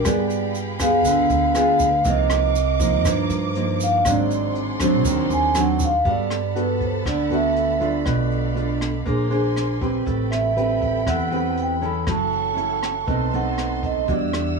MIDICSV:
0, 0, Header, 1, 6, 480
1, 0, Start_track
1, 0, Tempo, 501253
1, 41, Time_signature, 4, 2, 24, 8
1, 13976, End_track
2, 0, Start_track
2, 0, Title_t, "String section"
2, 0, Program_c, 0, 48
2, 0, Note_on_c, 0, 77, 60
2, 0, Note_on_c, 0, 79, 58
2, 51, Note_on_c, 0, 68, 71
2, 51, Note_on_c, 0, 83, 75
2, 1922, Note_off_c, 0, 79, 0
2, 1945, Note_off_c, 0, 68, 0
2, 1945, Note_off_c, 0, 83, 0
2, 1949, Note_on_c, 0, 70, 70
2, 1954, Note_on_c, 0, 75, 64
2, 1958, Note_on_c, 0, 86, 81
2, 3838, Note_off_c, 0, 77, 0
2, 3853, Note_off_c, 0, 70, 0
2, 3855, Note_off_c, 0, 75, 0
2, 3857, Note_off_c, 0, 86, 0
2, 3869, Note_on_c, 0, 74, 69
2, 3869, Note_on_c, 0, 84, 79
2, 3878, Note_on_c, 0, 68, 72
2, 3879, Note_on_c, 0, 78, 63
2, 5773, Note_off_c, 0, 74, 0
2, 5774, Note_off_c, 0, 84, 0
2, 5778, Note_off_c, 0, 68, 0
2, 5778, Note_off_c, 0, 78, 0
2, 5788, Note_on_c, 0, 78, 59
2, 5792, Note_on_c, 0, 83, 74
2, 5793, Note_on_c, 0, 69, 61
2, 5794, Note_on_c, 0, 81, 63
2, 7694, Note_off_c, 0, 78, 0
2, 7697, Note_off_c, 0, 69, 0
2, 7697, Note_off_c, 0, 81, 0
2, 7729, Note_on_c, 0, 69, 67
2, 7730, Note_on_c, 0, 74, 58
2, 7731, Note_on_c, 0, 77, 60
2, 8648, Note_off_c, 0, 83, 0
2, 8663, Note_off_c, 0, 74, 0
2, 8671, Note_on_c, 0, 84, 71
2, 8674, Note_on_c, 0, 70, 59
2, 8674, Note_on_c, 0, 74, 57
2, 8675, Note_off_c, 0, 69, 0
2, 8676, Note_off_c, 0, 77, 0
2, 8681, Note_on_c, 0, 80, 58
2, 9626, Note_off_c, 0, 84, 0
2, 9628, Note_off_c, 0, 70, 0
2, 9628, Note_off_c, 0, 74, 0
2, 9629, Note_on_c, 0, 79, 65
2, 9631, Note_off_c, 0, 80, 0
2, 9632, Note_on_c, 0, 83, 74
2, 9634, Note_on_c, 0, 69, 68
2, 11536, Note_off_c, 0, 79, 0
2, 11538, Note_off_c, 0, 83, 0
2, 11539, Note_off_c, 0, 69, 0
2, 11551, Note_on_c, 0, 76, 61
2, 11551, Note_on_c, 0, 78, 58
2, 11555, Note_on_c, 0, 69, 69
2, 11555, Note_on_c, 0, 85, 74
2, 12507, Note_off_c, 0, 76, 0
2, 12507, Note_off_c, 0, 78, 0
2, 12509, Note_off_c, 0, 69, 0
2, 12509, Note_off_c, 0, 85, 0
2, 12517, Note_on_c, 0, 71, 59
2, 12518, Note_on_c, 0, 81, 55
2, 12518, Note_on_c, 0, 84, 73
2, 12521, Note_on_c, 0, 75, 54
2, 13471, Note_off_c, 0, 71, 0
2, 13471, Note_off_c, 0, 81, 0
2, 13471, Note_off_c, 0, 84, 0
2, 13473, Note_off_c, 0, 75, 0
2, 13487, Note_on_c, 0, 74, 65
2, 13489, Note_on_c, 0, 76, 59
2, 13490, Note_on_c, 0, 78, 61
2, 13493, Note_on_c, 0, 88, 77
2, 13976, Note_off_c, 0, 74, 0
2, 13976, Note_off_c, 0, 76, 0
2, 13976, Note_off_c, 0, 78, 0
2, 13976, Note_off_c, 0, 88, 0
2, 13976, End_track
3, 0, Start_track
3, 0, Title_t, "Vibraphone"
3, 0, Program_c, 1, 11
3, 58, Note_on_c, 1, 74, 77
3, 496, Note_off_c, 1, 74, 0
3, 781, Note_on_c, 1, 77, 94
3, 1501, Note_off_c, 1, 77, 0
3, 1513, Note_on_c, 1, 77, 97
3, 1943, Note_off_c, 1, 77, 0
3, 1998, Note_on_c, 1, 75, 90
3, 2688, Note_off_c, 1, 75, 0
3, 2700, Note_on_c, 1, 75, 78
3, 2936, Note_off_c, 1, 75, 0
3, 2943, Note_on_c, 1, 72, 81
3, 3670, Note_on_c, 1, 77, 101
3, 3671, Note_off_c, 1, 72, 0
3, 3900, Note_off_c, 1, 77, 0
3, 3910, Note_on_c, 1, 74, 79
3, 4341, Note_off_c, 1, 74, 0
3, 4623, Note_on_c, 1, 72, 91
3, 5105, Note_on_c, 1, 80, 91
3, 5338, Note_off_c, 1, 80, 0
3, 5361, Note_on_c, 1, 78, 89
3, 5531, Note_off_c, 1, 72, 0
3, 5585, Note_off_c, 1, 78, 0
3, 5598, Note_on_c, 1, 77, 95
3, 5824, Note_off_c, 1, 77, 0
3, 5840, Note_on_c, 1, 74, 91
3, 6312, Note_off_c, 1, 74, 0
3, 6315, Note_on_c, 1, 71, 70
3, 6543, Note_off_c, 1, 71, 0
3, 6555, Note_on_c, 1, 72, 67
3, 6781, Note_on_c, 1, 74, 83
3, 6783, Note_off_c, 1, 72, 0
3, 7016, Note_off_c, 1, 74, 0
3, 7031, Note_on_c, 1, 76, 79
3, 7501, Note_on_c, 1, 74, 67
3, 7508, Note_off_c, 1, 76, 0
3, 8412, Note_off_c, 1, 74, 0
3, 9872, Note_on_c, 1, 76, 86
3, 10616, Note_on_c, 1, 78, 93
3, 10618, Note_off_c, 1, 76, 0
3, 10832, Note_off_c, 1, 78, 0
3, 10878, Note_on_c, 1, 78, 79
3, 11106, Note_off_c, 1, 78, 0
3, 11126, Note_on_c, 1, 79, 81
3, 11350, Note_off_c, 1, 79, 0
3, 11351, Note_on_c, 1, 83, 88
3, 11583, Note_off_c, 1, 83, 0
3, 11589, Note_on_c, 1, 81, 92
3, 12787, Note_on_c, 1, 78, 81
3, 12811, Note_off_c, 1, 81, 0
3, 13269, Note_off_c, 1, 78, 0
3, 13271, Note_on_c, 1, 75, 81
3, 13503, Note_off_c, 1, 75, 0
3, 13507, Note_on_c, 1, 74, 73
3, 13976, Note_off_c, 1, 74, 0
3, 13976, End_track
4, 0, Start_track
4, 0, Title_t, "Nylon-string guitar"
4, 0, Program_c, 2, 24
4, 40, Note_on_c, 2, 55, 52
4, 46, Note_on_c, 2, 59, 54
4, 48, Note_on_c, 2, 65, 51
4, 50, Note_on_c, 2, 68, 52
4, 723, Note_off_c, 2, 59, 0
4, 726, Note_off_c, 2, 65, 0
4, 726, Note_off_c, 2, 68, 0
4, 769, Note_on_c, 2, 59, 59
4, 772, Note_on_c, 2, 65, 62
4, 774, Note_on_c, 2, 68, 70
4, 976, Note_off_c, 2, 55, 0
4, 1001, Note_on_c, 2, 50, 50
4, 1446, Note_off_c, 2, 59, 0
4, 1446, Note_off_c, 2, 65, 0
4, 1448, Note_off_c, 2, 68, 0
4, 1481, Note_on_c, 2, 59, 56
4, 1484, Note_on_c, 2, 65, 59
4, 1489, Note_on_c, 2, 68, 56
4, 1789, Note_off_c, 2, 59, 0
4, 1791, Note_off_c, 2, 65, 0
4, 1793, Note_off_c, 2, 68, 0
4, 1935, Note_off_c, 2, 50, 0
4, 1959, Note_on_c, 2, 48, 51
4, 1964, Note_on_c, 2, 53, 46
4, 1965, Note_on_c, 2, 58, 57
4, 1966, Note_on_c, 2, 63, 55
4, 2436, Note_off_c, 2, 58, 0
4, 2437, Note_off_c, 2, 53, 0
4, 2439, Note_off_c, 2, 63, 0
4, 2678, Note_on_c, 2, 53, 59
4, 2682, Note_on_c, 2, 58, 61
4, 2686, Note_on_c, 2, 63, 60
4, 2895, Note_off_c, 2, 48, 0
4, 2923, Note_on_c, 2, 43, 53
4, 3359, Note_off_c, 2, 53, 0
4, 3362, Note_off_c, 2, 58, 0
4, 3362, Note_off_c, 2, 63, 0
4, 3405, Note_on_c, 2, 53, 53
4, 3409, Note_on_c, 2, 58, 53
4, 3414, Note_on_c, 2, 63, 64
4, 3843, Note_off_c, 2, 53, 0
4, 3845, Note_off_c, 2, 58, 0
4, 3847, Note_off_c, 2, 63, 0
4, 3855, Note_off_c, 2, 43, 0
4, 3887, Note_on_c, 2, 44, 55
4, 3888, Note_on_c, 2, 54, 51
4, 3893, Note_on_c, 2, 60, 54
4, 3895, Note_on_c, 2, 62, 51
4, 4563, Note_off_c, 2, 54, 0
4, 4564, Note_off_c, 2, 60, 0
4, 4567, Note_off_c, 2, 62, 0
4, 4598, Note_on_c, 2, 54, 61
4, 4602, Note_on_c, 2, 60, 58
4, 4604, Note_on_c, 2, 62, 66
4, 4818, Note_off_c, 2, 44, 0
4, 4839, Note_on_c, 2, 51, 55
4, 5279, Note_off_c, 2, 54, 0
4, 5281, Note_off_c, 2, 60, 0
4, 5282, Note_off_c, 2, 62, 0
4, 5316, Note_on_c, 2, 54, 54
4, 5321, Note_on_c, 2, 60, 61
4, 5325, Note_on_c, 2, 62, 55
4, 5626, Note_off_c, 2, 54, 0
4, 5627, Note_off_c, 2, 60, 0
4, 5630, Note_off_c, 2, 62, 0
4, 5774, Note_off_c, 2, 51, 0
4, 5795, Note_on_c, 2, 55, 49
4, 5798, Note_on_c, 2, 59, 46
4, 5800, Note_on_c, 2, 66, 52
4, 5805, Note_on_c, 2, 69, 51
4, 6106, Note_off_c, 2, 59, 0
4, 6108, Note_off_c, 2, 66, 0
4, 6109, Note_off_c, 2, 69, 0
4, 6274, Note_on_c, 2, 59, 54
4, 6277, Note_on_c, 2, 66, 52
4, 6283, Note_on_c, 2, 69, 47
4, 6733, Note_off_c, 2, 55, 0
4, 6753, Note_off_c, 2, 59, 0
4, 6753, Note_off_c, 2, 66, 0
4, 6753, Note_on_c, 2, 50, 53
4, 6757, Note_off_c, 2, 69, 0
4, 6991, Note_on_c, 2, 59, 60
4, 6999, Note_on_c, 2, 66, 56
4, 7001, Note_on_c, 2, 69, 54
4, 7436, Note_off_c, 2, 59, 0
4, 7440, Note_off_c, 2, 66, 0
4, 7440, Note_off_c, 2, 69, 0
4, 7469, Note_on_c, 2, 57, 54
4, 7473, Note_on_c, 2, 62, 61
4, 7478, Note_on_c, 2, 65, 73
4, 7691, Note_off_c, 2, 50, 0
4, 7707, Note_on_c, 2, 47, 50
4, 8156, Note_off_c, 2, 57, 0
4, 8156, Note_off_c, 2, 62, 0
4, 8160, Note_off_c, 2, 65, 0
4, 8187, Note_on_c, 2, 57, 48
4, 8194, Note_on_c, 2, 62, 45
4, 8195, Note_on_c, 2, 65, 57
4, 8515, Note_off_c, 2, 57, 0
4, 8519, Note_off_c, 2, 62, 0
4, 8519, Note_off_c, 2, 65, 0
4, 8649, Note_off_c, 2, 47, 0
4, 8670, Note_on_c, 2, 58, 50
4, 8674, Note_on_c, 2, 62, 51
4, 8676, Note_on_c, 2, 68, 52
4, 8682, Note_on_c, 2, 72, 49
4, 8877, Note_off_c, 2, 62, 0
4, 8879, Note_off_c, 2, 68, 0
4, 8881, Note_off_c, 2, 72, 0
4, 8907, Note_on_c, 2, 62, 60
4, 8910, Note_on_c, 2, 68, 59
4, 8914, Note_on_c, 2, 72, 68
4, 9355, Note_off_c, 2, 62, 0
4, 9355, Note_off_c, 2, 68, 0
4, 9358, Note_off_c, 2, 72, 0
4, 9395, Note_on_c, 2, 60, 56
4, 9399, Note_on_c, 2, 67, 52
4, 9405, Note_on_c, 2, 71, 57
4, 9612, Note_off_c, 2, 58, 0
4, 9631, Note_on_c, 2, 57, 44
4, 10079, Note_off_c, 2, 60, 0
4, 10080, Note_off_c, 2, 67, 0
4, 10084, Note_off_c, 2, 71, 0
4, 10113, Note_on_c, 2, 60, 44
4, 10119, Note_on_c, 2, 67, 47
4, 10120, Note_on_c, 2, 71, 58
4, 10572, Note_off_c, 2, 57, 0
4, 10596, Note_on_c, 2, 52, 51
4, 10799, Note_off_c, 2, 60, 0
4, 10800, Note_off_c, 2, 67, 0
4, 10802, Note_off_c, 2, 71, 0
4, 10832, Note_on_c, 2, 60, 55
4, 10835, Note_on_c, 2, 67, 55
4, 10841, Note_on_c, 2, 71, 58
4, 11278, Note_off_c, 2, 60, 0
4, 11280, Note_off_c, 2, 67, 0
4, 11282, Note_off_c, 2, 71, 0
4, 11313, Note_on_c, 2, 61, 67
4, 11318, Note_on_c, 2, 64, 56
4, 11319, Note_on_c, 2, 69, 64
4, 11535, Note_off_c, 2, 52, 0
4, 11554, Note_on_c, 2, 54, 48
4, 11999, Note_off_c, 2, 61, 0
4, 12000, Note_off_c, 2, 64, 0
4, 12002, Note_off_c, 2, 69, 0
4, 12029, Note_on_c, 2, 61, 50
4, 12033, Note_on_c, 2, 64, 51
4, 12039, Note_on_c, 2, 69, 49
4, 12358, Note_off_c, 2, 61, 0
4, 12360, Note_off_c, 2, 64, 0
4, 12363, Note_off_c, 2, 69, 0
4, 12494, Note_off_c, 2, 54, 0
4, 12514, Note_on_c, 2, 47, 44
4, 12517, Note_on_c, 2, 57, 52
4, 12519, Note_on_c, 2, 60, 44
4, 12524, Note_on_c, 2, 63, 55
4, 12721, Note_off_c, 2, 57, 0
4, 12722, Note_off_c, 2, 60, 0
4, 12725, Note_off_c, 2, 63, 0
4, 12765, Note_on_c, 2, 57, 53
4, 12770, Note_on_c, 2, 60, 55
4, 12776, Note_on_c, 2, 63, 66
4, 13445, Note_off_c, 2, 57, 0
4, 13448, Note_off_c, 2, 60, 0
4, 13450, Note_off_c, 2, 63, 0
4, 13455, Note_off_c, 2, 47, 0
4, 13486, Note_on_c, 2, 52, 49
4, 13488, Note_on_c, 2, 55, 46
4, 13489, Note_on_c, 2, 62, 46
4, 13495, Note_on_c, 2, 66, 47
4, 13926, Note_off_c, 2, 55, 0
4, 13928, Note_off_c, 2, 62, 0
4, 13930, Note_off_c, 2, 66, 0
4, 13976, Note_off_c, 2, 52, 0
4, 13976, End_track
5, 0, Start_track
5, 0, Title_t, "Upright bass"
5, 0, Program_c, 3, 32
5, 48, Note_on_c, 3, 43, 91
5, 1002, Note_off_c, 3, 43, 0
5, 1002, Note_on_c, 3, 38, 81
5, 1224, Note_off_c, 3, 38, 0
5, 1242, Note_on_c, 3, 38, 85
5, 1921, Note_off_c, 3, 38, 0
5, 1965, Note_on_c, 3, 36, 93
5, 2923, Note_off_c, 3, 36, 0
5, 2923, Note_on_c, 3, 43, 89
5, 3143, Note_off_c, 3, 43, 0
5, 3155, Note_on_c, 3, 43, 84
5, 3837, Note_off_c, 3, 43, 0
5, 3880, Note_on_c, 3, 32, 93
5, 4835, Note_off_c, 3, 32, 0
5, 4835, Note_on_c, 3, 39, 92
5, 5059, Note_off_c, 3, 39, 0
5, 5073, Note_on_c, 3, 39, 80
5, 5757, Note_off_c, 3, 39, 0
5, 5796, Note_on_c, 3, 43, 84
5, 6718, Note_off_c, 3, 43, 0
5, 6758, Note_on_c, 3, 38, 65
5, 7680, Note_off_c, 3, 38, 0
5, 7717, Note_on_c, 3, 35, 83
5, 8640, Note_off_c, 3, 35, 0
5, 8679, Note_on_c, 3, 34, 64
5, 9601, Note_off_c, 3, 34, 0
5, 9638, Note_on_c, 3, 33, 81
5, 10561, Note_off_c, 3, 33, 0
5, 10597, Note_on_c, 3, 40, 73
5, 11521, Note_off_c, 3, 40, 0
5, 11558, Note_on_c, 3, 30, 87
5, 12482, Note_off_c, 3, 30, 0
5, 12522, Note_on_c, 3, 35, 74
5, 13444, Note_off_c, 3, 35, 0
5, 13482, Note_on_c, 3, 40, 89
5, 13976, Note_off_c, 3, 40, 0
5, 13976, End_track
6, 0, Start_track
6, 0, Title_t, "Drums"
6, 47, Note_on_c, 9, 37, 59
6, 47, Note_on_c, 9, 42, 52
6, 49, Note_on_c, 9, 36, 52
6, 50, Note_on_c, 9, 82, 63
6, 143, Note_off_c, 9, 37, 0
6, 143, Note_off_c, 9, 42, 0
6, 145, Note_off_c, 9, 36, 0
6, 146, Note_off_c, 9, 82, 0
6, 285, Note_on_c, 9, 42, 40
6, 289, Note_on_c, 9, 82, 29
6, 381, Note_off_c, 9, 42, 0
6, 384, Note_off_c, 9, 82, 0
6, 525, Note_on_c, 9, 82, 47
6, 527, Note_on_c, 9, 42, 39
6, 621, Note_off_c, 9, 82, 0
6, 623, Note_off_c, 9, 42, 0
6, 763, Note_on_c, 9, 37, 56
6, 763, Note_on_c, 9, 42, 38
6, 764, Note_on_c, 9, 82, 58
6, 766, Note_on_c, 9, 36, 49
6, 858, Note_off_c, 9, 37, 0
6, 858, Note_off_c, 9, 42, 0
6, 860, Note_off_c, 9, 82, 0
6, 862, Note_off_c, 9, 36, 0
6, 1004, Note_on_c, 9, 82, 62
6, 1005, Note_on_c, 9, 36, 54
6, 1006, Note_on_c, 9, 42, 56
6, 1100, Note_off_c, 9, 82, 0
6, 1101, Note_off_c, 9, 36, 0
6, 1102, Note_off_c, 9, 42, 0
6, 1242, Note_on_c, 9, 82, 23
6, 1243, Note_on_c, 9, 42, 39
6, 1337, Note_off_c, 9, 82, 0
6, 1339, Note_off_c, 9, 42, 0
6, 1483, Note_on_c, 9, 37, 53
6, 1483, Note_on_c, 9, 42, 40
6, 1484, Note_on_c, 9, 82, 40
6, 1578, Note_off_c, 9, 37, 0
6, 1578, Note_off_c, 9, 42, 0
6, 1580, Note_off_c, 9, 82, 0
6, 1719, Note_on_c, 9, 42, 41
6, 1719, Note_on_c, 9, 82, 53
6, 1723, Note_on_c, 9, 36, 55
6, 1814, Note_off_c, 9, 42, 0
6, 1814, Note_off_c, 9, 82, 0
6, 1819, Note_off_c, 9, 36, 0
6, 1960, Note_on_c, 9, 82, 59
6, 1963, Note_on_c, 9, 36, 51
6, 1963, Note_on_c, 9, 42, 58
6, 2056, Note_off_c, 9, 82, 0
6, 2058, Note_off_c, 9, 36, 0
6, 2059, Note_off_c, 9, 42, 0
6, 2200, Note_on_c, 9, 37, 64
6, 2200, Note_on_c, 9, 42, 42
6, 2203, Note_on_c, 9, 82, 27
6, 2296, Note_off_c, 9, 37, 0
6, 2296, Note_off_c, 9, 42, 0
6, 2299, Note_off_c, 9, 82, 0
6, 2440, Note_on_c, 9, 42, 43
6, 2447, Note_on_c, 9, 82, 54
6, 2536, Note_off_c, 9, 42, 0
6, 2543, Note_off_c, 9, 82, 0
6, 2678, Note_on_c, 9, 42, 41
6, 2680, Note_on_c, 9, 36, 54
6, 2682, Note_on_c, 9, 82, 53
6, 2774, Note_off_c, 9, 42, 0
6, 2776, Note_off_c, 9, 36, 0
6, 2778, Note_off_c, 9, 82, 0
6, 2921, Note_on_c, 9, 36, 56
6, 2923, Note_on_c, 9, 37, 53
6, 2923, Note_on_c, 9, 42, 62
6, 2924, Note_on_c, 9, 82, 59
6, 3017, Note_off_c, 9, 36, 0
6, 3019, Note_off_c, 9, 37, 0
6, 3019, Note_off_c, 9, 42, 0
6, 3019, Note_off_c, 9, 82, 0
6, 3158, Note_on_c, 9, 42, 46
6, 3159, Note_on_c, 9, 82, 25
6, 3254, Note_off_c, 9, 42, 0
6, 3255, Note_off_c, 9, 82, 0
6, 3400, Note_on_c, 9, 42, 41
6, 3496, Note_off_c, 9, 42, 0
6, 3643, Note_on_c, 9, 42, 42
6, 3643, Note_on_c, 9, 82, 56
6, 3738, Note_off_c, 9, 42, 0
6, 3739, Note_off_c, 9, 82, 0
6, 3878, Note_on_c, 9, 37, 49
6, 3878, Note_on_c, 9, 42, 54
6, 3881, Note_on_c, 9, 36, 57
6, 3885, Note_on_c, 9, 82, 69
6, 3974, Note_off_c, 9, 37, 0
6, 3974, Note_off_c, 9, 42, 0
6, 3977, Note_off_c, 9, 36, 0
6, 3980, Note_off_c, 9, 82, 0
6, 4121, Note_on_c, 9, 42, 41
6, 4127, Note_on_c, 9, 82, 28
6, 4216, Note_off_c, 9, 42, 0
6, 4222, Note_off_c, 9, 82, 0
6, 4357, Note_on_c, 9, 42, 38
6, 4453, Note_off_c, 9, 42, 0
6, 4594, Note_on_c, 9, 37, 55
6, 4594, Note_on_c, 9, 42, 33
6, 4597, Note_on_c, 9, 36, 47
6, 4602, Note_on_c, 9, 82, 54
6, 4689, Note_off_c, 9, 37, 0
6, 4689, Note_off_c, 9, 42, 0
6, 4693, Note_off_c, 9, 36, 0
6, 4697, Note_off_c, 9, 82, 0
6, 4834, Note_on_c, 9, 42, 57
6, 4836, Note_on_c, 9, 36, 62
6, 4837, Note_on_c, 9, 82, 63
6, 4930, Note_off_c, 9, 42, 0
6, 4932, Note_off_c, 9, 36, 0
6, 4932, Note_off_c, 9, 82, 0
6, 5075, Note_on_c, 9, 42, 38
6, 5081, Note_on_c, 9, 82, 25
6, 5170, Note_off_c, 9, 42, 0
6, 5177, Note_off_c, 9, 82, 0
6, 5312, Note_on_c, 9, 82, 47
6, 5314, Note_on_c, 9, 37, 59
6, 5314, Note_on_c, 9, 42, 38
6, 5408, Note_off_c, 9, 82, 0
6, 5410, Note_off_c, 9, 37, 0
6, 5410, Note_off_c, 9, 42, 0
6, 5549, Note_on_c, 9, 82, 54
6, 5553, Note_on_c, 9, 42, 43
6, 5555, Note_on_c, 9, 36, 53
6, 5645, Note_off_c, 9, 82, 0
6, 5648, Note_off_c, 9, 42, 0
6, 5651, Note_off_c, 9, 36, 0
6, 5792, Note_on_c, 9, 42, 35
6, 5795, Note_on_c, 9, 36, 50
6, 5888, Note_off_c, 9, 42, 0
6, 5891, Note_off_c, 9, 36, 0
6, 6037, Note_on_c, 9, 37, 52
6, 6037, Note_on_c, 9, 42, 25
6, 6133, Note_off_c, 9, 37, 0
6, 6133, Note_off_c, 9, 42, 0
6, 6282, Note_on_c, 9, 42, 36
6, 6377, Note_off_c, 9, 42, 0
6, 6518, Note_on_c, 9, 36, 46
6, 6518, Note_on_c, 9, 42, 25
6, 6614, Note_off_c, 9, 36, 0
6, 6614, Note_off_c, 9, 42, 0
6, 6759, Note_on_c, 9, 36, 50
6, 6763, Note_on_c, 9, 37, 52
6, 6763, Note_on_c, 9, 42, 41
6, 6854, Note_off_c, 9, 36, 0
6, 6859, Note_off_c, 9, 37, 0
6, 6859, Note_off_c, 9, 42, 0
6, 7002, Note_on_c, 9, 42, 29
6, 7098, Note_off_c, 9, 42, 0
6, 7240, Note_on_c, 9, 42, 36
6, 7336, Note_off_c, 9, 42, 0
6, 7480, Note_on_c, 9, 42, 27
6, 7576, Note_off_c, 9, 42, 0
6, 7715, Note_on_c, 9, 37, 50
6, 7715, Note_on_c, 9, 42, 35
6, 7718, Note_on_c, 9, 36, 51
6, 7811, Note_off_c, 9, 37, 0
6, 7811, Note_off_c, 9, 42, 0
6, 7814, Note_off_c, 9, 36, 0
6, 7961, Note_on_c, 9, 42, 23
6, 8057, Note_off_c, 9, 42, 0
6, 8202, Note_on_c, 9, 42, 35
6, 8298, Note_off_c, 9, 42, 0
6, 8439, Note_on_c, 9, 37, 49
6, 8439, Note_on_c, 9, 42, 21
6, 8535, Note_off_c, 9, 37, 0
6, 8535, Note_off_c, 9, 42, 0
6, 8679, Note_on_c, 9, 36, 52
6, 8679, Note_on_c, 9, 42, 34
6, 8775, Note_off_c, 9, 36, 0
6, 8775, Note_off_c, 9, 42, 0
6, 8923, Note_on_c, 9, 42, 26
6, 9019, Note_off_c, 9, 42, 0
6, 9159, Note_on_c, 9, 37, 49
6, 9159, Note_on_c, 9, 42, 37
6, 9255, Note_off_c, 9, 37, 0
6, 9255, Note_off_c, 9, 42, 0
6, 9399, Note_on_c, 9, 36, 53
6, 9399, Note_on_c, 9, 42, 26
6, 9495, Note_off_c, 9, 36, 0
6, 9495, Note_off_c, 9, 42, 0
6, 9640, Note_on_c, 9, 36, 48
6, 9642, Note_on_c, 9, 42, 36
6, 9736, Note_off_c, 9, 36, 0
6, 9737, Note_off_c, 9, 42, 0
6, 9882, Note_on_c, 9, 37, 49
6, 9882, Note_on_c, 9, 42, 25
6, 9978, Note_off_c, 9, 37, 0
6, 9978, Note_off_c, 9, 42, 0
6, 10124, Note_on_c, 9, 42, 39
6, 10219, Note_off_c, 9, 42, 0
6, 10358, Note_on_c, 9, 36, 47
6, 10358, Note_on_c, 9, 42, 27
6, 10453, Note_off_c, 9, 36, 0
6, 10454, Note_off_c, 9, 42, 0
6, 10597, Note_on_c, 9, 36, 54
6, 10599, Note_on_c, 9, 37, 52
6, 10599, Note_on_c, 9, 42, 39
6, 10693, Note_off_c, 9, 36, 0
6, 10694, Note_off_c, 9, 37, 0
6, 10694, Note_off_c, 9, 42, 0
6, 10839, Note_on_c, 9, 42, 28
6, 10934, Note_off_c, 9, 42, 0
6, 11081, Note_on_c, 9, 42, 36
6, 11176, Note_off_c, 9, 42, 0
6, 11324, Note_on_c, 9, 42, 27
6, 11419, Note_off_c, 9, 42, 0
6, 11557, Note_on_c, 9, 37, 54
6, 11557, Note_on_c, 9, 42, 36
6, 11559, Note_on_c, 9, 36, 54
6, 11652, Note_off_c, 9, 37, 0
6, 11652, Note_off_c, 9, 42, 0
6, 11654, Note_off_c, 9, 36, 0
6, 11800, Note_on_c, 9, 42, 25
6, 11895, Note_off_c, 9, 42, 0
6, 12040, Note_on_c, 9, 42, 38
6, 12135, Note_off_c, 9, 42, 0
6, 12283, Note_on_c, 9, 37, 52
6, 12379, Note_off_c, 9, 37, 0
6, 12522, Note_on_c, 9, 36, 52
6, 12522, Note_on_c, 9, 42, 36
6, 12618, Note_off_c, 9, 36, 0
6, 12618, Note_off_c, 9, 42, 0
6, 12763, Note_on_c, 9, 42, 22
6, 12859, Note_off_c, 9, 42, 0
6, 13003, Note_on_c, 9, 37, 49
6, 13003, Note_on_c, 9, 42, 33
6, 13099, Note_off_c, 9, 37, 0
6, 13099, Note_off_c, 9, 42, 0
6, 13245, Note_on_c, 9, 36, 47
6, 13245, Note_on_c, 9, 42, 25
6, 13341, Note_off_c, 9, 36, 0
6, 13341, Note_off_c, 9, 42, 0
6, 13485, Note_on_c, 9, 36, 54
6, 13486, Note_on_c, 9, 42, 35
6, 13580, Note_off_c, 9, 36, 0
6, 13581, Note_off_c, 9, 42, 0
6, 13726, Note_on_c, 9, 37, 59
6, 13822, Note_off_c, 9, 37, 0
6, 13976, End_track
0, 0, End_of_file